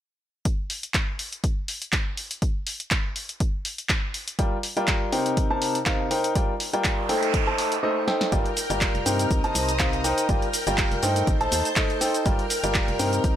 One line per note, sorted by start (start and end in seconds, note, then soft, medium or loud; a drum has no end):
0.45 kick loud
0.45 closed hi-hat medium
0.70 open hi-hat loud
0.83 closed hi-hat medium
0.94 kick loud
0.94 clap loud
0.94 closed hi-hat medium
1.19 open hi-hat medium
1.33 closed hi-hat medium
1.44 kick loud
1.44 closed hi-hat medium
1.68 open hi-hat loud
1.82 closed hi-hat medium
1.92 kick loud
1.92 clap loud
1.92 closed hi-hat medium
2.17 open hi-hat medium
2.31 closed hi-hat medium
2.42 kick loud
2.42 closed hi-hat medium
2.67 open hi-hat loud
2.80 closed hi-hat medium
2.91 kick loud
2.91 clap loud
2.91 closed hi-hat medium
3.16 open hi-hat medium
3.29 closed hi-hat soft
3.40 kick loud
3.40 closed hi-hat medium
3.65 open hi-hat loud
3.78 closed hi-hat medium
3.89 kick loud
3.89 clap loud
3.89 closed hi-hat medium
4.14 open hi-hat medium
4.28 closed hi-hat medium
4.39 4.56 G3 medium
4.39 4.56 F4 medium
4.39 4.56 A#4 medium
4.39 4.56 D5 medium
4.39 4.56 G5 medium
4.39 kick loud
4.39 closed hi-hat medium
4.63 open hi-hat loud
4.77 5.10 G3 medium
4.77 5.10 F4 medium
4.77 5.10 A#4 medium
4.77 5.10 D5 medium
4.77 5.10 G5 loud
4.77 closed hi-hat soft
4.88 kick loud
4.88 clap loud
4.88 closed hi-hat medium
5.12 5.47 C3 medium
5.12 5.47 D#4 medium
5.12 5.47 A#4 medium
5.12 5.47 C5 medium
5.12 5.47 G5 loud
5.12 open hi-hat medium
5.26 closed hi-hat soft
5.37 kick loud
5.37 closed hi-hat medium
5.50 5.76 C3 medium
5.50 5.76 D#4 medium
5.50 5.76 A#4 medium
5.50 5.76 C5 medium
5.50 5.76 A5 medium
5.62 open hi-hat loud
5.75 closed hi-hat medium
5.86 6.08 C3 medium
5.86 6.08 D#4 medium
5.86 6.08 A#4 medium
5.86 6.08 C5 medium
5.86 6.08 F5 medium
5.86 kick loud
5.86 clap loud
5.86 closed hi-hat medium
6.11 6.32 D#4 medium
6.11 6.32 A#4 medium
6.11 6.32 C5 medium
6.11 6.32 G5 loud
6.11 open hi-hat medium
6.24 closed hi-hat medium
6.35 6.52 G3 medium
6.35 6.52 F4 medium
6.35 6.52 A#4 medium
6.35 6.52 D5 medium
6.35 6.52 G5 medium
6.35 kick loud
6.35 closed hi-hat medium
6.35 noise sweep medium
6.60 open hi-hat loud
6.73 7.07 G3 medium
6.73 7.07 F4 medium
6.73 7.07 A#4 medium
6.73 7.07 D5 medium
6.73 7.07 G5 loud
6.73 closed hi-hat soft
6.84 kick loud
6.84 clap loud
6.84 closed hi-hat medium
7.09 7.44 A3 medium
7.09 7.44 D#4 medium
7.09 7.44 A4 medium
7.09 7.44 C5 medium
7.09 7.44 G5 loud
7.09 open hi-hat medium
7.23 closed hi-hat soft
7.34 kick loud
7.34 closed hi-hat medium
7.47 7.73 A3 medium
7.47 7.73 D#4 medium
7.47 7.73 A4 medium
7.47 7.73 C5 medium
7.47 7.73 A5 medium
7.58 open hi-hat loud
7.72 closed hi-hat soft
7.83 8.05 A3 medium
7.83 8.05 D#4 medium
7.83 8.05 A4 medium
7.83 8.05 C5 medium
7.83 8.05 D#5 medium
8.08 8.29 D#4 medium
8.08 8.29 A4 medium
8.08 8.29 C5 medium
8.08 8.29 G5 loud
8.08 snare medium
8.21 snare medium
8.32 8.43 G1 loud
8.32 8.49 G3 medium
8.32 8.49 F4 medium
8.32 8.49 A#4 medium
8.32 9.30 A#4 medium
8.32 8.49 D5 medium
8.32 8.49 G5 medium
8.32 9.30 G5 medium
8.32 9.30 F6 medium
8.32 kick loud
8.32 closed hi-hat medium
8.32 shaker soft
8.46 closed hi-hat soft
8.57 open hi-hat loud
8.57 shaker medium
8.70 8.90 G1 medium
8.70 9.03 G3 medium
8.70 9.03 F4 medium
8.70 9.03 A#4 medium
8.70 9.03 D5 medium
8.70 9.03 G5 medium
8.70 closed hi-hat medium
8.70 shaker soft
8.81 kick loud
8.81 clap loud
8.81 closed hi-hat medium
8.81 shaker soft
8.95 9.04 F1 medium
8.95 closed hi-hat soft
9.06 9.26 G2 medium
9.06 9.41 C3 medium
9.06 9.41 D#4 medium
9.06 9.41 A#4 medium
9.06 9.41 C5 medium
9.06 9.41 G5 loud
9.06 open hi-hat medium
9.06 shaker medium
9.19 closed hi-hat medium
9.19 shaker soft
9.31 9.41 C2 medium
9.31 10.28 C5 medium
9.31 10.28 A#5 medium
9.31 10.28 D#6 medium
9.31 kick loud
9.31 closed hi-hat medium
9.31 shaker soft
9.44 9.70 C3 medium
9.44 9.70 D#4 medium
9.44 9.70 A#4 medium
9.44 9.70 C5 medium
9.44 9.70 A5 medium
9.44 closed hi-hat soft
9.55 10.14 C2 medium
9.55 open hi-hat loud
9.55 shaker medium
9.69 closed hi-hat medium
9.69 shaker soft
9.79 10.02 C3 medium
9.79 10.02 D#4 medium
9.79 10.02 A#4 medium
9.79 10.02 C5 medium
9.79 10.02 F5 medium
9.79 kick loud
9.79 clap loud
9.79 closed hi-hat medium
9.79 shaker soft
9.93 closed hi-hat soft
10.04 10.26 D#4 medium
10.04 10.26 A#4 medium
10.04 10.26 C5 medium
10.04 10.26 G5 loud
10.04 open hi-hat medium
10.04 shaker medium
10.18 closed hi-hat medium
10.18 shaker soft
10.29 10.40 G1 loud
10.29 10.46 G3 medium
10.29 10.46 F4 medium
10.29 11.26 A#4 medium
10.29 10.46 A#4 medium
10.29 10.46 D5 medium
10.29 11.26 G5 medium
10.29 10.46 G5 medium
10.29 11.26 F6 medium
10.29 kick loud
10.29 closed hi-hat medium
10.29 shaker soft
10.42 closed hi-hat soft
10.54 open hi-hat loud
10.54 shaker medium
10.67 10.87 G1 medium
10.67 11.00 G3 medium
10.67 11.00 F4 medium
10.67 11.00 A#4 medium
10.67 11.00 D5 medium
10.67 11.00 G5 loud
10.67 closed hi-hat medium
10.67 shaker soft
10.78 kick loud
10.78 clap loud
10.78 closed hi-hat medium
10.78 shaker soft
10.92 11.01 F1 medium
10.92 closed hi-hat soft
11.03 11.23 G2 medium
11.03 11.37 A3 medium
11.03 11.37 D#4 medium
11.03 11.37 A4 medium
11.03 11.37 C5 medium
11.03 11.37 G5 loud
11.03 open hi-hat medium
11.03 shaker medium
11.16 closed hi-hat medium
11.16 shaker soft
11.27 11.48 A1 loud
11.27 12.25 C5 medium
11.27 12.25 A5 medium
11.27 12.25 G6 medium
11.27 kick loud
11.27 closed hi-hat medium
11.27 shaker soft
11.41 11.66 A3 medium
11.41 11.66 D#4 medium
11.41 11.66 A4 medium
11.41 11.66 C5 medium
11.41 11.66 A5 loud
11.41 closed hi-hat soft
11.52 11.63 D#2 medium
11.52 open hi-hat loud
11.52 shaker medium
11.65 closed hi-hat medium
11.65 shaker soft
11.76 11.98 A3 medium
11.76 11.98 D#4 medium
11.76 11.98 A4 medium
11.76 11.98 C5 medium
11.76 11.98 D#5 medium
11.76 kick loud
11.76 clap loud
11.76 closed hi-hat soft
11.76 shaker soft
11.90 closed hi-hat soft
12.01 12.22 D#4 medium
12.01 12.22 A4 medium
12.01 12.22 C5 medium
12.01 12.22 G5 loud
12.01 open hi-hat medium
12.01 shaker medium
12.14 closed hi-hat medium
12.14 shaker soft
12.26 12.37 G1 medium
12.26 12.43 G3 medium
12.26 12.43 F4 medium
12.26 12.43 A#4 medium
12.26 13.23 A#4 medium
12.26 12.43 D5 medium
12.26 12.43 G5 medium
12.26 13.23 G5 medium
12.26 13.23 F6 medium
12.26 kick loud
12.26 closed hi-hat medium
12.26 shaker soft
12.39 closed hi-hat soft
12.50 open hi-hat loud
12.50 shaker medium
12.64 12.83 G1 medium
12.64 12.97 G3 medium
12.64 12.97 F4 medium
12.64 12.97 A#4 medium
12.64 12.97 D5 medium
12.64 12.97 G5 loud
12.64 closed hi-hat medium
12.64 shaker soft
12.74 kick loud
12.74 clap loud
12.74 closed hi-hat medium
12.74 shaker soft
12.88 12.97 F1 medium
12.88 closed hi-hat soft
12.99 13.20 G2 medium
12.99 13.34 C3 loud
12.99 13.34 D#4 medium
12.99 13.34 A#4 medium
12.99 13.34 C5 medium
12.99 13.34 G5 loud
12.99 open hi-hat medium
12.99 shaker medium
13.13 closed hi-hat soft
13.13 shaker soft
13.24 13.35 C2 medium
13.24 13.36 C5 medium
13.24 13.36 A#5 medium
13.24 13.36 D#6 medium
13.24 kick loud
13.24 closed hi-hat soft
13.24 shaker soft